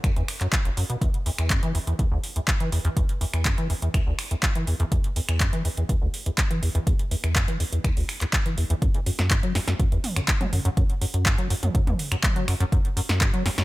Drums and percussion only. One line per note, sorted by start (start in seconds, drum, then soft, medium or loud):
0.04 finger snap medium
0.04 kick loud
0.04 closed hi-hat medium
0.16 closed hi-hat soft
0.28 finger snap medium
0.28 open hi-hat loud
0.41 clap soft
0.41 closed hi-hat soft
0.53 kick loud
0.53 clap loud
0.53 closed hi-hat medium
0.65 closed hi-hat soft
0.77 open hi-hat loud
0.90 closed hi-hat soft
1.01 kick loud
1.01 closed hi-hat medium
1.14 closed hi-hat soft
1.26 open hi-hat loud
1.38 finger snap medium
1.38 closed hi-hat soft
1.50 kick loud
1.50 clap loud
1.50 closed hi-hat medium
1.63 closed hi-hat soft
1.75 open hi-hat loud
1.87 closed hi-hat soft
1.99 kick loud
1.99 closed hi-hat medium
2.24 open hi-hat loud
2.36 closed hi-hat medium
2.48 kick loud
2.48 clap loud
2.48 closed hi-hat medium
2.60 closed hi-hat soft
2.72 open hi-hat loud
2.85 closed hi-hat medium
2.97 kick loud
2.97 closed hi-hat medium
3.09 closed hi-hat soft
3.21 open hi-hat loud
3.34 finger snap medium
3.34 closed hi-hat medium
3.45 kick loud
3.45 clap loud
3.45 closed hi-hat medium
3.58 closed hi-hat soft
3.70 open hi-hat loud
3.82 closed hi-hat medium
3.94 finger snap medium
3.94 kick loud
3.94 closed hi-hat medium
4.19 finger snap medium
4.19 open hi-hat loud
4.31 closed hi-hat medium
4.43 kick loud
4.43 clap loud
4.43 closed hi-hat medium
4.55 closed hi-hat soft
4.67 open hi-hat loud
4.80 closed hi-hat medium
4.92 kick loud
4.92 closed hi-hat medium
5.04 closed hi-hat soft
5.16 open hi-hat loud
5.29 finger snap medium
5.29 closed hi-hat medium
5.40 kick loud
5.40 clap loud
5.40 closed hi-hat medium
5.53 closed hi-hat soft
5.65 open hi-hat loud
5.77 closed hi-hat medium
5.89 kick loud
5.89 closed hi-hat medium
6.14 open hi-hat loud
6.26 closed hi-hat medium
6.38 kick loud
6.38 clap loud
6.38 closed hi-hat medium
6.51 closed hi-hat soft
6.63 open hi-hat loud
6.75 closed hi-hat medium
6.87 kick loud
6.87 closed hi-hat medium
6.99 closed hi-hat soft
7.11 open hi-hat loud
7.24 finger snap medium
7.24 closed hi-hat medium
7.36 kick loud
7.36 clap loud
7.36 closed hi-hat medium
7.48 closed hi-hat soft
7.60 open hi-hat loud
7.73 closed hi-hat medium
7.84 finger snap medium
7.84 kick loud
7.84 closed hi-hat medium
7.97 open hi-hat medium
8.09 finger snap medium
8.09 open hi-hat loud
8.21 clap soft
8.21 closed hi-hat medium
8.33 kick loud
8.33 clap loud
8.33 closed hi-hat medium
8.46 closed hi-hat soft
8.58 open hi-hat loud
8.70 closed hi-hat medium
8.82 kick loud
8.82 closed hi-hat medium
8.94 closed hi-hat soft
9.06 open hi-hat loud
9.19 snare medium
9.19 closed hi-hat medium
9.31 kick loud
9.31 clap loud
9.31 closed hi-hat medium
9.43 closed hi-hat soft
9.55 snare medium
9.55 open hi-hat loud
9.68 snare medium
9.68 closed hi-hat medium
9.79 kick loud
9.79 closed hi-hat medium
9.92 closed hi-hat soft
10.04 mid tom medium
10.04 open hi-hat loud
10.16 finger snap medium
10.16 closed hi-hat medium
10.28 kick loud
10.28 clap loud
10.28 closed hi-hat medium
10.41 closed hi-hat soft
10.41 mid tom medium
10.53 open hi-hat loud
10.65 closed hi-hat medium
10.77 kick loud
10.77 closed hi-hat medium
10.90 closed hi-hat soft
11.02 open hi-hat loud
11.14 closed hi-hat medium
11.26 kick loud
11.26 clap loud
11.26 closed hi-hat medium
11.38 closed hi-hat soft
11.50 open hi-hat loud
11.63 closed hi-hat medium
11.63 mid tom medium
11.75 kick loud
11.75 closed hi-hat medium
11.87 closed hi-hat soft
11.87 mid tom loud
11.99 open hi-hat loud
12.12 finger snap medium
12.12 closed hi-hat medium
12.23 kick loud
12.23 clap loud
12.23 closed hi-hat medium
12.23 mid tom medium
12.36 closed hi-hat soft
12.48 finger snap medium
12.48 open hi-hat loud
12.60 closed hi-hat medium
12.72 kick loud
12.72 closed hi-hat medium
12.85 closed hi-hat soft
12.97 open hi-hat loud
13.09 snare medium
13.09 closed hi-hat medium
13.21 kick loud
13.21 clap loud
13.21 closed hi-hat medium
13.34 closed hi-hat soft
13.46 snare medium
13.46 open hi-hat loud
13.58 snare medium
13.58 closed hi-hat medium